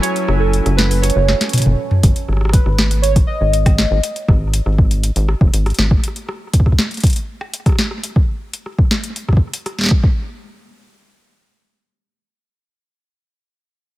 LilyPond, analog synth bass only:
\new Staff \with { instrumentName = "Analog synth bass" } { \clef bass \time 4/4 \key fis \dorian \tempo 4 = 120 r8 fis,,8. fis,,4 fis,,16 r8. fis,,16 r8 | gis,,16 r16 gis,,8. gis,,4~ gis,,16 r16 gis,,4 gis,,16 | r8 gis,,8. gis,,4 gis,,16 r16 fis,,16 gis,,16 r16 gis,,16 r16 | r1 |
r1 | r1 | r1 | }